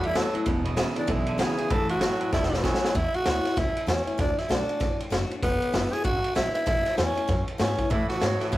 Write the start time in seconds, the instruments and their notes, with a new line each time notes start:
Already playing: upright bass E2, steel-string acoustic guitar E2
0.04 clean electric guitar A2 G3, tenor saxophone E4, ride
0.15 clean electric guitar A2 F#3, steel-string acoustic guitar E3 A3 C#4 E4, tenor saxophone A4, snare, ride
0.34 clean electric guitar A2 F#3, steel-string acoustic guitar C#4 E4, muted upright bass stroke, ride
0.46 upright bass E1, clean electric guitar E2 B2, steel-string acoustic guitar E2, kick, ride
0.65 clean electric guitar E2 B2, ride
0.76 clean electric guitar E2 C#3, steel-string acoustic guitar D3 G#3 B3 E4, snare, ride
0.95 clean electric guitar E2 C#3, steel-string acoustic guitar B3 E4, tenor saxophone D4, muted upright bass stroke, ride
1.07 upright bass B1, clean electric guitar E2 D3, steel-string acoustic guitar B2, tenor saxophone E4, kick, ride
1.26 clean electric guitar E2 D3, ride
1.38 clean electric guitar E2 C#3, steel-string acoustic guitar D3 G#3 B3 E4, tenor saxophone G#4, snare, ride
1.57 clean electric guitar E2 C#3, steel-string acoustic guitar B3 E4, muted upright bass stroke, ride
1.70 upright bass A1, clean electric guitar A2 E3, steel-string acoustic guitar A2, tenor saxophone A4, kick, ride
1.89 clean electric guitar A2 E3, tenor saxophone F#4, ride
2.01 clean electric guitar A2 F#3, steel-string acoustic guitar E3 A3 C#4 E4, snare, ride
2.20 clean electric guitar A2 F#3, muted upright bass stroke, ride
2.32 upright bass E1, steel-string acoustic guitar E2, clean electric guitar A2 G3, tenor saxophone E4, kick, snare
2.43 snare
2.52 clean electric guitar A2 G3, snare
2.63 clean electric guitar A2 F#3, steel-string acoustic guitar E3 A3 C#4 E4, tenor saxophone C#4, kick, snare
2.74 snare
2.82 clean electric guitar A2 F#3, muted upright bass stroke, snare
2.95 upright bass E2, steel-string acoustic guitar A2, tenor saxophone E4, kick, ride
3.14 tenor saxophone F#4, muted upright bass stroke, ride
3.25 upright bass D2, steel-string acoustic guitar E3 A3 C#4 E4, snare, ride
3.44 steel-string acoustic guitar C#4 E4, snare, ride
3.57 upright bass C#2, steel-string acoustic guitar E2, tenor saxophone E4, kick, snare, ride
3.77 ride
3.87 upright bass E2, steel-string acoustic guitar E3 A3 C#4 E4, tenor saxophone C#4, snare, ride
4.06 steel-string acoustic guitar C#4 E4, muted upright bass stroke, ride
4.18 upright bass D2, steel-string acoustic guitar D3, tenor saxophone D4, kick, snare, ride
4.38 tenor saxophone E4, snare, ride
4.49 upright bass B1, steel-string acoustic guitar D3 A3 D4 F#4, tenor saxophone D4, snare, ride
4.68 steel-string acoustic guitar D4 F#4, muted upright bass stroke, ride
4.80 upright bass A1, steel-string acoustic guitar A2, kick, snare, ride
5.00 ride
5.10 upright bass F#1, steel-string acoustic guitar D3 A3 D4 F#4, snare, ride
5.30 steel-string acoustic guitar D4 F#4, muted upright bass stroke, ride
5.43 upright bass E1, steel-string acoustic guitar E2, tenor saxophone B3, kick, snare, ride
5.61 muted upright bass stroke, ride
5.73 upright bass F#1, steel-string acoustic guitar D3 G#3 B3 E4, snare, ride
5.92 steel-string acoustic guitar B3 E4, tenor saxophone G#4, muted upright bass stroke, snare, ride
6.04 upright bass G#1, steel-string acoustic guitar B2, tenor saxophone F#4, kick, ride
6.24 muted upright bass stroke, ride
6.34 upright bass A#1, steel-string acoustic guitar D3 G#3 B3 E4, tenor saxophone E4, snare, ride
6.54 tenor saxophone E4, muted upright bass stroke, ride
6.66 upright bass A1, steel-string acoustic guitar A2, tenor saxophone E4, kick, snare, ride
6.86 snare, ride
6.97 upright bass E2, steel-string acoustic guitar E3 A3 C#4 E4, tenor saxophone C#4, snare, ride
7.16 steel-string acoustic guitar C#4 E4, muted upright bass stroke, ride
7.28 steel-string acoustic guitar E2, upright bass F#2, kick, snare, ride
7.48 muted upright bass stroke, ride
7.58 upright bass G#2, steel-string acoustic guitar E3 A3 C#4 E4, tenor saxophone C#4, snare, ride
7.78 steel-string acoustic guitar C#4 E4, kick, ride
7.90 steel-string acoustic guitar A2, clean electric guitar A2 E3, upright bass A2, tenor saxophone E4, kick, ride
8.08 tenor saxophone F#4, muted upright bass stroke, snare, ride
8.21 upright bass G#2, clean electric guitar A2 F#3, steel-string acoustic guitar E3 A3 C#4 E4, snare, ride
8.40 clean electric guitar A2 E3, steel-string acoustic guitar C#4 E4, muted upright bass stroke, snare, ride
8.47 tenor saxophone F#4
8.52 upright bass F#2, clean electric guitar A2 E3, steel-string acoustic guitar B2, tenor saxophone E4, kick, ride